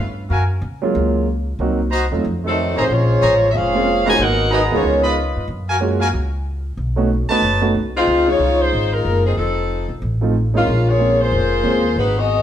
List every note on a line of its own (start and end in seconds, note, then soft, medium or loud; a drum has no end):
0.00 0.28 G2 medium
0.29 0.60 F#2 medium
0.29 0.44 F#4 medium
0.29 0.43 A#4 medium
0.29 0.43 F5 medium
0.29 0.43 G#5 medium
0.61 0.92 C#3 medium
0.82 1.25 F#3 medium
0.82 1.25 G#3 medium
0.82 1.25 A#3 medium
0.82 1.25 C#4 medium
0.82 1.25 F4 medium
0.95 1.57 C#2 medium
1.59 2.08 C2 medium
1.59 1.78 F#3 medium
1.59 1.78 A#3 medium
1.59 1.78 C4 medium
1.59 1.79 D#4 medium
1.59 1.79 F#4 medium
1.91 2.05 F#4 medium
1.91 2.05 C5 medium
1.91 2.05 D#5 medium
1.91 2.05 A#5 medium
2.11 2.23 E2 medium
2.11 2.23 F#3 medium
2.11 2.23 A3 medium
2.11 2.24 C4 medium
2.11 2.24 D#4 medium
2.11 2.24 F4 medium
2.25 2.74 F2 medium
2.44 2.75 C3 medium
2.44 2.75 D#3 medium
2.44 2.76 F#3 medium
2.44 2.75 A3 medium
2.44 2.76 C4 medium
2.44 2.76 D#4 medium
2.44 2.76 A4 medium
2.76 2.89 A1 medium
2.76 2.89 D#3 medium
2.76 2.89 A3 medium
2.76 2.91 A3 medium
2.76 2.89 C4 medium
2.76 2.91 D#4 medium
2.76 2.91 F#4 medium
2.76 2.85 G#4 medium
2.76 2.85 C5 medium
2.76 2.91 C5 medium
2.76 2.85 C#5 medium
2.76 2.85 A#5 medium
2.87 3.19 A#1 medium
2.87 3.48 F3 medium
2.87 3.48 G#3 medium
2.87 3.48 C#4 medium
2.92 3.51 G#3 medium
2.92 3.50 F4 medium
2.92 3.50 C5 medium
2.92 3.50 C#5 medium
3.21 3.52 A1 medium
3.21 3.35 G#4 medium
3.21 3.35 C5 medium
3.21 3.35 C#5 medium
3.21 3.35 A#5 medium
3.51 4.16 F1 medium
3.51 4.06 G#3 medium
3.51 4.07 C#4 medium
3.51 4.06 F4 medium
3.51 3.55 E5 medium
3.56 4.08 C#4 medium
3.56 4.08 G#4 medium
3.56 4.08 C5 medium
3.56 4.08 F5 loud
3.74 3.85 G#3 medium
3.74 3.86 A#3 medium
3.74 3.86 C4 medium
3.74 3.86 C#4 medium
3.74 3.86 F4 medium
4.05 4.18 C#3 medium
4.05 4.18 F3 medium
4.05 4.17 G#3 medium
4.05 4.19 G#3 medium
4.05 4.17 A#3 medium
4.05 4.17 B3 medium
4.05 4.18 D#4 medium
4.05 4.18 F#4 medium
4.05 4.14 G#4 medium
4.05 4.14 B4 medium
4.05 4.14 F#5 medium
4.05 4.19 G#5 loud
4.05 4.14 A#5 loud
4.10 4.20 F4 medium
4.10 4.20 C5 medium
4.10 4.20 C#5 medium
4.19 4.68 G#1 medium
4.19 4.50 B3 medium
4.19 4.50 D#4 medium
4.19 4.52 D#4 medium
4.19 4.51 F#4 medium
4.19 4.52 A#4 medium
4.19 4.52 B4 medium
4.19 4.52 F#5 loud
4.50 4.61 F#3 medium
4.50 4.60 B3 medium
4.50 4.60 D#4 medium
4.50 4.62 F#4 medium
4.50 4.83 G#4 medium
4.50 4.62 A#4 medium
4.50 4.83 B4 medium
4.50 4.62 D#5 medium
4.50 4.83 F#5 medium
4.50 4.83 A#5 loud
4.54 4.62 B3 medium
4.71 4.82 D2 medium
4.71 5.02 F3 medium
4.71 5.14 G#3 medium
4.71 5.02 G#3 medium
4.71 5.14 B3 medium
4.71 5.03 B3 medium
4.71 5.02 C#4 medium
4.71 5.14 D#4 medium
4.71 5.14 F4 medium
4.71 5.03 F4 medium
4.71 5.03 G#4 medium
4.71 5.14 A#4 medium
4.71 5.03 C#5 medium
4.83 5.32 C#2 medium
5.03 5.45 F4 medium
5.03 5.45 B4 medium
5.03 5.45 D#5 medium
5.03 5.45 B5 loud
5.36 5.47 G2 medium
5.48 6.09 F#2 medium
5.68 5.76 F#4 medium
5.68 5.76 A#4 medium
5.68 5.76 F5 medium
5.68 5.77 G#5 loud
5.80 5.99 G#3 medium
5.80 5.99 A#3 medium
5.80 5.99 C#4 medium
5.80 5.99 F4 medium
5.80 5.99 F#4 medium
6.00 6.09 F#4 medium
6.00 6.09 A#4 medium
6.00 6.09 F5 medium
6.00 6.08 G#5 loud
6.14 6.75 C#2 medium
6.77 7.26 B1 medium
6.96 7.08 A3 medium
6.96 7.09 B3 medium
6.96 7.08 C#4 medium
6.96 7.09 D#4 medium
6.96 7.09 F#4 medium
7.29 7.41 A3 medium
7.29 7.41 B3 medium
7.29 7.41 C#4 medium
7.29 7.72 D#4 medium
7.29 7.41 D#4 medium
7.29 7.41 F#4 medium
7.29 7.72 B4 medium
7.29 7.72 C#5 medium
7.29 7.72 A5 loud
7.29 muted upright bass stroke soft
7.42 7.72 F#1 medium
7.61 7.73 A3 medium
7.61 7.73 B3 medium
7.61 7.73 C#4 medium
7.61 7.73 D#4 medium
7.61 7.73 F#4 medium
7.75 8.05 C2 medium
7.96 8.26 G#3 medium
7.96 8.26 C4 medium
7.96 8.26 D#4 medium
7.96 8.26 F4 medium
8.07 8.37 C#2 medium
8.27 8.69 G#3 medium
8.27 8.59 G#3 medium
8.27 8.69 C#4 medium
8.27 8.69 D#4 medium
8.27 8.60 D#4 medium
8.27 8.69 F4 medium
8.27 8.59 F4 medium
8.27 8.61 C#5 loud
8.39 8.70 C2 medium
8.60 8.91 G#3 medium
8.60 8.91 D#4 medium
8.60 8.91 F4 medium
8.60 8.93 C5 loud
8.73 9.03 G#1 medium
8.92 9.24 G#3 medium
8.92 9.24 D#4 medium
8.92 9.24 F4 medium
8.92 9.25 A#4 medium
9.05 9.35 F#1 medium
9.25 9.36 F3 medium
9.25 9.36 C4 medium
9.25 9.36 D#4 medium
9.25 9.36 G#4 medium
9.37 9.86 F1 medium
9.37 9.98 F3 medium
9.37 9.98 C4 medium
9.37 9.98 D#4 medium
9.37 9.98 A4 medium
9.89 10.00 C2 medium
10.02 10.63 A1 medium
10.21 10.33 F3 medium
10.21 10.33 A3 medium
10.21 10.33 C4 medium
10.21 10.33 D#4 medium
10.21 10.33 F4 medium
10.54 10.65 G#3 medium
10.54 10.86 G#3 medium
10.54 10.65 A#3 medium
10.54 10.85 A#3 medium
10.54 10.65 C4 medium
10.54 10.66 C#4 medium
10.54 10.85 C#4 medium
10.54 10.66 D#4 medium
10.54 10.86 F4 medium
10.66 11.28 A#1 medium
10.89 11.18 A#3 medium
10.89 11.19 F4 medium
10.89 11.19 G#4 medium
10.89 11.20 C#5 loud
10.99 11.17 G#3 medium
10.99 11.17 A#3 soft
10.99 11.17 C4 soft
10.99 11.17 C#4 medium
10.99 11.18 F4 medium
11.19 11.97 A#3 medium
11.19 11.97 F4 medium
11.19 11.97 G#4 medium
11.19 11.97 C5 medium
11.32 11.62 F1 medium
11.62 11.94 D#2 medium
11.62 11.81 G#3 medium
11.62 11.82 A#3 medium
11.62 11.82 C4 medium
11.62 11.82 C#4 soft
11.62 11.82 G#4 medium
11.96 12.42 G#1 medium
11.96 12.16 G#3 medium
11.96 12.16 D#4 medium
11.96 12.16 F#4 medium
11.96 12.16 B4 medium
12.18 12.42 B3 medium
12.18 12.42 F#4 medium
12.18 12.42 G#4 medium
12.18 12.42 D#5 loud